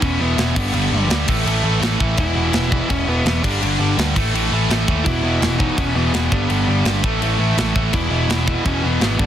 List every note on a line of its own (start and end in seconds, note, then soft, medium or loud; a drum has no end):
0.02 0.15 E1 medium
0.02 0.19 E2 loud
0.02 0.19 B2 loud
0.02 0.20 E3 loud
0.02 0.21 C#4 loud
0.02 kick loud
0.02 crash medium
0.20 0.34 E1 medium
0.20 0.36 E2 medium
0.20 0.37 B2 medium
0.20 0.37 E3 loud
0.20 0.56 B3 medium
0.37 0.51 E1 loud
0.37 0.55 E2 loud
0.37 0.55 B2 loud
0.37 0.55 E3 loud
0.37 snare loud
0.37 crash medium
0.55 0.69 G1 medium
0.55 0.72 G2 loud
0.55 0.73 D3 loud
0.55 0.74 G3 loud
0.55 1.07 B3 medium
0.55 kick loud
0.55 crash loud
0.73 0.87 G1 loud
0.73 0.90 G2 loud
0.73 0.91 D3 loud
0.73 0.92 G3 loud
0.73 crash medium
0.91 1.05 G1 loud
0.91 1.08 G2 medium
0.91 1.09 D3 loud
0.91 1.09 G3 loud
1.09 1.23 D2 loud
1.09 1.27 G2 loud
1.09 1.27 D3 loud
1.09 1.27 G3 loud
1.09 snare loud
1.09 crash medium
1.27 1.41 A1 medium
1.27 1.44 A2 medium
1.27 1.45 E3 loud
1.27 1.46 A3 loud
1.27 kick loud
1.27 crash loud
1.46 1.59 A1 loud
1.46 1.62 A2 loud
1.46 1.63 E3 loud
1.46 1.64 A3 loud
1.46 crash medium
1.64 1.77 A1 medium
1.64 1.80 A2 medium
1.64 1.81 E3 loud
1.64 1.81 A3 medium
1.81 1.95 A1 loud
1.81 1.97 A2 loud
1.81 1.98 E3 loud
1.81 1.99 A3 loud
1.81 snare loud
1.81 crash medium
1.99 2.13 A1 medium
1.99 2.16 A2 medium
1.99 2.17 E3 loud
1.99 2.17 A3 loud
1.99 kick medium
2.17 2.31 E1 loud
2.17 2.33 E2 loud
2.17 2.34 B2 loud
2.17 2.35 E3 loud
2.17 2.87 E4 loud
2.17 kick loud
2.17 crash medium
2.34 2.49 E1 loud
2.34 2.51 E2 medium
2.34 2.52 B2 loud
2.34 2.53 E3 loud
2.52 2.80 E1 loud
2.52 2.70 E2 loud
2.52 2.71 B2 loud
2.52 2.72 E3 loud
2.52 snare loud
2.52 crash medium
2.71 2.87 E2 medium
2.71 2.88 B2 loud
2.71 2.89 E3 medium
2.71 kick medium
2.89 3.03 E1 medium
2.89 3.06 E2 loud
2.89 3.07 B2 loud
2.89 3.08 E3 loud
2.89 3.08 C#4 loud
2.89 kick loud
2.89 crash medium
3.07 3.20 E1 medium
3.07 3.24 E2 medium
3.07 3.25 B2 medium
3.07 3.26 E3 loud
3.07 3.43 B3 loud
3.25 3.39 E1 loud
3.25 3.43 E2 loud
3.25 3.43 B2 loud
3.25 3.44 E3 loud
3.25 snare loud
3.25 crash medium
3.43 3.57 G1 medium
3.43 3.60 G2 loud
3.43 3.61 D3 loud
3.43 3.62 G3 loud
3.43 3.94 D4 medium
3.43 kick loud
3.43 crash loud
3.61 3.75 G1 loud
3.61 3.77 G2 loud
3.61 3.78 D3 loud
3.61 3.79 G3 loud
3.61 crash medium
3.79 3.93 G1 loud
3.79 3.95 G2 medium
3.79 3.96 D3 medium
3.79 3.97 G3 loud
3.97 4.17 D2 loud
3.97 4.14 G2 loud
3.97 4.15 D3 loud
3.97 4.15 G3 loud
3.97 snare loud
3.97 crash medium
4.16 4.29 A1 medium
4.16 4.32 A2 medium
4.16 4.33 E3 loud
4.16 4.34 A3 loud
4.16 kick loud
4.16 crash loud
4.33 4.47 A1 medium
4.33 4.51 A2 loud
4.33 4.52 E3 loud
4.33 4.52 A3 loud
4.33 crash medium
4.52 4.65 A1 medium
4.52 4.69 A2 medium
4.52 4.69 E3 medium
4.52 4.70 A3 loud
4.70 4.83 A1 medium
4.70 4.86 A2 medium
4.70 4.87 E3 loud
4.70 4.88 A3 loud
4.70 snare loud
4.70 crash medium
4.88 5.01 D#2 medium
4.88 5.05 A2 medium
4.88 5.05 E3 loud
4.88 5.05 A3 loud
4.88 kick medium
5.04 5.19 E1 loud
5.04 5.22 E2 loud
5.04 5.22 B2 loud
5.04 5.23 E3 loud
5.04 5.55 E4 loud
5.04 kick loud
5.04 crash medium
5.23 5.37 E1 loud
5.23 5.39 E2 medium
5.23 5.40 B2 loud
5.23 5.41 E3 loud
5.41 5.68 E1 loud
5.41 5.58 E2 medium
5.41 5.58 B2 loud
5.41 5.59 E3 loud
5.41 snare loud
5.41 crash medium
5.59 5.76 E2 medium
5.59 5.77 B2 loud
5.59 5.78 E3 medium
5.59 5.76 D#4 loud
5.59 kick medium
5.77 5.91 E1 medium
5.77 5.94 E2 loud
5.77 5.95 B2 loud
5.77 5.95 E3 loud
5.77 5.96 C#4 loud
5.77 kick loud
5.77 crash medium
5.95 6.09 E1 medium
5.95 6.12 E2 medium
5.95 6.12 B2 medium
5.95 6.13 E3 loud
5.95 6.32 B3 medium
6.13 6.27 E1 loud
6.13 6.30 E2 loud
6.13 6.31 B2 loud
6.13 6.31 E3 loud
6.13 snare loud
6.13 crash medium
6.31 6.45 G1 medium
6.31 6.48 G2 loud
6.31 6.49 D3 loud
6.31 6.49 G3 loud
6.31 6.83 B3 medium
6.31 kick loud
6.49 6.63 G1 loud
6.49 6.66 G2 loud
6.49 6.67 D3 loud
6.49 6.68 G3 loud
6.49 crash medium
6.67 6.81 G1 loud
6.67 6.85 G2 loud
6.67 6.85 D3 loud
6.67 6.86 G3 loud
6.85 6.99 G1 loud
6.85 7.03 G2 loud
6.85 7.03 D3 loud
6.85 7.03 G3 loud
6.85 snare loud
6.85 crash medium
7.03 7.17 A1 loud
7.03 7.20 A2 medium
7.03 7.21 E3 loud
7.03 7.21 A3 loud
7.03 kick loud
7.21 7.35 A1 loud
7.21 7.37 A2 loud
7.21 7.38 E3 loud
7.21 7.39 A3 loud
7.21 crash medium
7.39 7.53 A1 medium
7.39 7.55 A2 medium
7.39 7.57 E3 medium
7.39 7.57 A3 loud
7.57 7.71 A1 loud
7.57 7.74 A2 loud
7.57 7.74 E3 loud
7.57 7.75 A3 loud
7.57 snare loud
7.57 crash medium
7.75 7.89 A1 medium
7.75 7.92 A2 loud
7.75 7.93 E3 loud
7.75 7.93 A3 loud
7.75 kick medium
7.92 8.07 E1 loud
7.92 8.09 E2 loud
7.92 8.10 B2 loud
7.92 8.10 E3 loud
7.92 8.65 E4 loud
7.92 kick loud
7.92 crash medium
8.10 8.24 E1 loud
8.10 8.27 E2 loud
8.10 8.28 B2 loud
8.10 8.29 E3 loud
8.29 8.56 E1 loud
8.29 8.46 E2 loud
8.29 8.46 B2 loud
8.29 8.47 E3 loud
8.29 snare loud
8.29 crash medium
8.47 8.64 E2 medium
8.47 8.64 B2 medium
8.47 8.65 E3 loud
8.47 kick medium
8.65 8.79 E1 medium
8.65 8.81 E2 loud
8.65 8.82 B2 loud
8.65 8.83 E3 loud
8.65 8.84 C#4 loud
8.65 kick loud
8.65 crash medium
8.82 8.97 E1 medium
8.82 9.00 E2 medium
8.82 9.00 B2 medium
8.82 9.01 E3 loud
8.87 9.03 B3 medium
9.01 9.14 G#1 loud
9.01 9.18 E2 loud
9.01 9.18 B2 loud
9.01 9.19 E3 loud
9.01 9.26 B3 medium
9.01 snare loud
9.01 crash medium
9.19 9.26 G1 medium
9.19 9.26 G2 loud
9.19 9.26 D3 loud
9.19 9.26 G3 loud
9.19 kick loud